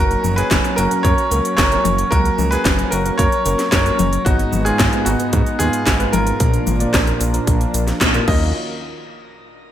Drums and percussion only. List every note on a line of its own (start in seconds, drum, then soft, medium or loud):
0.11 closed hi-hat soft
0.11 cabasa soft
0.24 high tom medium
0.24 cabasa medium
0.38 closed hi-hat soft
0.38 cabasa soft
0.51 kick loud
0.51 snare loud
0.51 clap loud
0.51 closed hi-hat medium
0.51 cabasa soft
0.64 closed hi-hat soft
0.64 cabasa soft
0.78 closed hi-hat medium
0.78 cabasa medium
0.91 closed hi-hat soft
0.91 cabasa soft
1.05 kick loud
1.05 closed hi-hat medium
1.05 cabasa soft
1.18 closed hi-hat soft
1.18 cabasa soft
1.31 closed hi-hat medium
1.31 cabasa medium
1.45 closed hi-hat soft
1.45 cabasa soft
1.58 kick loud
1.58 snare loud
1.58 clap loud
1.58 closed hi-hat medium
1.58 cabasa soft
1.72 closed hi-hat soft
1.72 cabasa soft
1.85 closed hi-hat medium
1.85 high tom medium
1.85 cabasa medium
1.98 closed hi-hat soft
1.98 cabasa soft
2.12 kick loud
2.12 closed hi-hat medium
2.12 cabasa soft
2.25 closed hi-hat soft
2.25 cabasa soft
2.39 high tom medium
2.39 cabasa medium
2.52 closed hi-hat soft
2.52 cabasa soft
2.65 kick loud
2.65 snare loud
2.65 clap loud
2.65 closed hi-hat medium
2.65 cabasa soft
2.79 closed hi-hat soft
2.79 cabasa soft
2.92 closed hi-hat medium
2.92 cabasa medium
3.06 closed hi-hat soft
3.06 cabasa soft
3.19 kick loud
3.19 closed hi-hat loud
3.19 cabasa soft
3.32 closed hi-hat soft
3.32 cabasa soft
3.46 closed hi-hat medium
3.46 cabasa medium
3.59 snare soft
3.59 closed hi-hat soft
3.59 cabasa soft
3.72 kick loud
3.72 snare loud
3.72 clap loud
3.72 closed hi-hat loud
3.72 cabasa soft
3.86 closed hi-hat soft
3.86 cabasa soft
3.99 closed hi-hat medium
3.99 high tom medium
3.99 cabasa medium
4.13 closed hi-hat soft
4.13 cabasa soft
4.26 kick loud
4.26 closed hi-hat medium
4.26 cabasa soft
4.39 closed hi-hat soft
4.39 cabasa soft
4.53 high tom medium
4.53 cabasa medium
4.66 closed hi-hat soft
4.66 cabasa soft
4.79 kick loud
4.79 snare loud
4.79 clap loud
4.79 closed hi-hat medium
4.79 cabasa soft
4.93 closed hi-hat soft
4.93 cabasa soft
5.06 closed hi-hat medium
5.06 cabasa medium
5.20 closed hi-hat soft
5.20 cabasa soft
5.33 kick loud
5.33 closed hi-hat loud
5.33 cabasa soft
5.46 closed hi-hat soft
5.46 cabasa soft
5.60 closed hi-hat medium
5.60 cabasa medium
5.73 closed hi-hat soft
5.73 cabasa soft
5.87 kick loud
5.87 snare loud
5.87 clap loud
5.87 closed hi-hat medium
5.87 cabasa soft
6.00 closed hi-hat soft
6.00 cabasa soft
6.13 closed hi-hat medium
6.13 high tom medium
6.13 cabasa medium
6.27 closed hi-hat soft
6.27 cabasa soft
6.40 kick loud
6.40 closed hi-hat loud
6.40 cabasa soft
6.54 closed hi-hat soft
6.54 cabasa soft
6.67 closed hi-hat soft
6.67 high tom medium
6.67 cabasa medium
6.80 closed hi-hat soft
6.80 cabasa soft
6.94 kick loud
6.94 snare loud
6.94 clap loud
6.94 closed hi-hat loud
6.94 cabasa soft
7.07 closed hi-hat soft
7.07 cabasa soft
7.21 closed hi-hat medium
7.21 cabasa medium
7.34 closed hi-hat soft
7.34 cabasa soft
7.47 kick loud
7.47 closed hi-hat loud
7.47 cabasa soft
7.61 closed hi-hat soft
7.61 cabasa soft
7.74 closed hi-hat medium
7.74 cabasa medium
7.88 snare soft
7.88 closed hi-hat soft
7.88 cabasa soft
8.01 kick loud
8.01 snare loud
8.01 clap loud
8.01 closed hi-hat loud
8.01 cabasa soft
8.14 closed hi-hat soft
8.14 cabasa soft
8.28 kick loud
8.28 crash medium